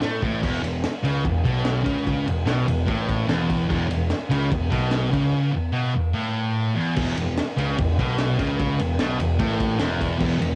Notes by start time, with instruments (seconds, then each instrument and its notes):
0.02 picked electric bass A2, distorted electric guitar A3, snare, crash
0.22 picked electric bass A1, distorted electric guitar A2, kick
0.42 picked electric bass E1, distorted electric guitar E2, kick, crash
0.63 picked electric bass E1, distorted electric guitar E2, ride
0.84 snare, ride
1.03 picked electric bass C#2, distorted electric guitar C#3, ride
1.24 picked electric bass E1, distorted electric guitar E2, kick, ride
1.44 picked electric bass B1, distorted electric guitar B2, kick, ride
1.65 snare, ride
1.83 picked electric bass C#2, distorted electric guitar C#3, kick, ride
2.07 kick, ride
2.26 picked electric bass E1, distorted electric guitar E2, ride
2.46 picked electric bass B1, distorted electric guitar B2, snare, ride
2.66 picked electric bass E1, distorted electric guitar E2, ride
2.86 picked electric bass A1, distorted electric guitar A2, kick, ride
3.09 kick, ride
3.27 picked electric bass E1, distorted electric guitar E2, snare, ride
3.50 kick, ride
3.68 picked electric bass E1, distorted electric guitar E2, kick, crash
3.89 picked electric bass E1, distorted electric guitar E2, ride
4.10 snare, ride
4.30 picked electric bass C#2, distorted electric guitar C#3, ride
4.50 picked electric bass E1, distorted electric guitar E2, kick, ride
4.70 picked electric bass B1, distorted electric guitar B2, kick, ride
4.91 snare, ride
5.11 picked electric bass C#2, distorted electric guitar C#3, kick, ride
5.52 distorted electric guitar E2
5.72 distorted electric guitar B2
5.94 distorted electric guitar E2
6.13 distorted electric guitar A2
6.75 distorted electric guitar E2
6.96 picked electric bass E1, distorted electric guitar E2, kick, crash
7.15 picked electric bass E1, distorted electric guitar E2, ride
7.38 snare, ride
7.57 picked electric bass C#2, distorted electric guitar C#3, ride
7.78 picked electric bass E1, distorted electric guitar E2, kick, ride
7.98 picked electric bass B1, distorted electric guitar B2, kick, ride
8.18 snare, ride
8.38 picked electric bass C#2, distorted electric guitar C#3, kick, ride
8.59 kick, ride
8.79 picked electric bass E1, distorted electric guitar E2, ride
8.99 picked electric bass B1, distorted electric guitar B2, snare, ride
9.19 picked electric bass E1, distorted electric guitar E2, ride
9.39 picked electric bass A1, distorted electric guitar A2, kick, ride
9.60 kick, ride
9.78 picked electric bass E1, distorted electric guitar E2, snare, ride
10.01 kick, ride
10.19 picked electric bass E1, distorted electric guitar E2, kick, crash
10.40 picked electric bass E1, distorted electric guitar E2, ride